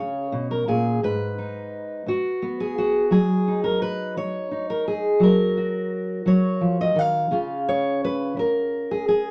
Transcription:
0.00 0.33 C#3 soft
0.00 0.99 C#4 soft
0.00 0.50 C#5 medium
0.32 0.67 B2 medium
0.51 0.68 A#4 medium
0.68 1.03 A#2 medium
0.68 1.03 G#4 medium
1.03 2.05 G#2 medium
1.03 2.60 B4 medium
1.38 2.08 D#4 soft
2.06 2.77 F#4 medium
2.06 muted steel-string acoustic guitar stroke soft
2.42 3.11 B3 soft
2.60 3.11 G#4 medium
2.78 3.12 F#4 medium
3.11 4.16 F#3 medium
3.11 3.63 G#4 medium
3.47 4.50 D#4 soft
3.64 3.81 A#4 medium
3.82 4.16 B4 medium
4.17 4.69 C#5 medium
4.17 muted steel-string acoustic guitar stroke medium
4.51 5.21 D#4 soft
4.70 4.86 A#4 medium
4.88 5.21 G#4 medium
5.20 6.24 F#3 medium
5.20 6.98 A#4 medium
5.57 7.28 F#4 soft
6.26 6.61 F#3 medium
6.26 6.79 C#5 medium
6.61 6.95 F3 medium
6.81 6.99 D#5 medium
6.95 7.30 D#3 medium
6.95 8.38 F5 medium
7.31 8.36 C#3 medium
7.31 9.31 C#4 soft
7.31 9.31 F4 soft
7.69 8.03 C#5 medium
8.04 8.38 B4 medium
8.37 9.31 A#4 medium
8.37 muted steel-string acoustic guitar stroke medium
8.91 9.07 G#4 medium
9.08 9.31 G#4 medium

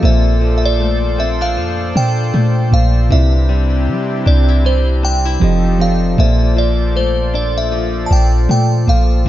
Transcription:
0.00 1.59 A#1 loud
0.00 1.24 A#2 medium
0.00 3.07 A#2 medium
0.00 3.10 A#2 medium
0.00 0.41 F3 medium
0.00 1.24 A#3 medium
0.00 0.12 C4 medium
0.00 3.07 F4 medium
0.00 3.07 A4 loud
0.00 1.25 A4 medium
0.00 3.07 C5 medium
0.00 3.07 D5 loud
0.05 1.25 C5 medium
0.05 1.26 D5 medium
0.05 0.56 E5 loud
0.41 1.56 F3 medium
0.58 0.65 E5 medium
0.65 1.21 D5 medium
0.80 2.32 A3 medium
1.18 1.41 C4 medium
1.18 1.29 E5 medium
1.41 1.94 D4 medium
1.41 1.97 F5 loud
1.57 1.93 F2 loud
1.57 2.71 F3 medium
1.95 2.32 A#2 loud
1.95 3.19 D4 medium
1.95 2.75 G5 loud
2.34 2.71 A#2 loud
2.34 3.19 A3 medium
2.71 3.09 A#1 loud
2.71 3.03 A#2 medium
2.71 3.19 F3 medium
2.71 3.03 A#3 medium
2.71 3.04 A4 medium
2.71 3.04 C5 medium
2.71 2.88 F5 loud
2.75 3.05 D5 medium
3.09 3.89 C2 loud
3.09 4.31 C3 medium
3.09 5.50 C3 medium
3.09 5.39 C3 medium
3.09 4.32 C4 medium
3.09 6.15 C4 medium
3.09 5.39 D4 medium
3.09 5.39 E4 medium
3.09 4.32 E4 medium
3.09 5.39 G4 loud
3.09 4.33 B4 medium
3.09 4.30 E5 loud
3.13 4.33 D5 medium
3.49 4.63 G3 medium
3.88 4.24 G3 loud
4.26 5.38 C2 loud
4.26 4.48 D4 medium
4.26 4.66 D5 medium
4.48 5.03 E4 medium
4.65 5.41 G3 medium
4.65 4.80 C5 loud
5.03 5.25 D4 medium
5.03 5.83 G5 loud
5.25 5.50 E4 medium
5.40 6.15 F1 loud
5.40 5.73 F3 medium
5.40 6.56 F3 medium
5.40 6.18 F3 medium
5.40 5.73 C4 medium
5.40 6.17 D#4 medium
5.40 6.17 G4 medium
5.40 5.74 G4 medium
5.40 6.17 A4 medium
5.40 5.74 A4 medium
5.44 5.75 D#5 medium
5.78 6.11 F3 medium
5.78 6.11 C4 medium
5.78 6.27 C4 medium
5.78 6.12 G4 medium
5.78 6.12 A4 medium
5.78 6.20 F5 medium
5.83 6.13 D5 medium
6.17 8.07 A#1 loud
6.17 7.39 A#2 medium
6.17 9.25 A#2 medium
6.17 9.23 A#2 medium
6.17 7.40 A#3 medium
6.17 9.23 F4 medium
6.17 9.23 A4 medium
6.17 7.40 A4 medium
6.17 9.23 C5 medium
6.17 7.41 C5 medium
6.17 9.23 D5 loud
6.17 6.59 E5 loud
6.21 7.41 D5 medium
6.57 7.71 F3 medium
6.57 6.97 D5 loud
6.95 8.48 A3 medium
6.95 7.35 C5 medium
7.33 8.09 D4 medium
7.33 7.57 D5 medium
7.58 8.07 E5 loud
7.72 8.86 F3 medium
8.06 8.11 A5 medium
8.11 8.48 A#1 loud
8.11 9.29 D4 medium
8.11 8.27 G5 loud
8.49 8.86 A#2 loud
8.49 9.29 A3 medium
8.49 8.90 G5 loud
8.86 9.25 A#1 loud
8.86 9.18 A#2 medium
8.86 9.29 F3 medium
8.86 9.19 A#3 medium
8.86 9.19 A4 medium
8.86 9.20 C5 medium
8.86 9.24 F5 loud
8.90 9.20 F5 medium
9.24 9.29 C3 medium
9.24 9.29 C4 medium
9.24 9.29 D4 medium
9.24 9.29 G4 loud

